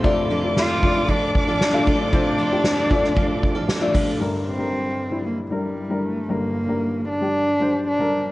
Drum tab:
RD |xxxxxxxxx-xxxxxx|xxxxx-xxxxxxx-xx|----------------|----------------|
HH |----------------|--------------o-|----------------|----------------|
SD |----o-------o---|----o--o----o---|----------------|----------------|
BD |o-----o-o-o---o-|o-----o-o-o---o-|----------------|----------------|